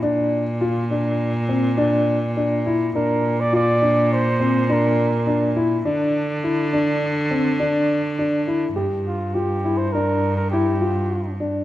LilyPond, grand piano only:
\new Staff \with { instrumentName = "Grand piano" } { \time 5/4 \key g \dorian \tempo 4 = 103 d'4 f'8 d'4 c'8 d'4 d'8 e'8 | d'4 f'8 d'4 c'8 d'4 d'8 e'8 | d'4 e'8 d'4 c'8 d'4 d'8 e'8 | g'4 f'8 e'8 d'4 e'8 f'4 d'8 | }